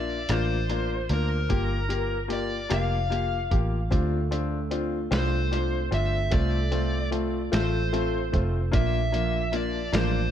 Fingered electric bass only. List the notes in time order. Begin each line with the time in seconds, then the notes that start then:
Already playing: A#1
0.29 A1
1.10 D2
1.50 G1
2.71 F1
3.52 A1
3.92 D2
5.11 C2
5.92 G1
6.33 C2
7.53 A1
8.34 F1
8.74 A#1
9.93 A1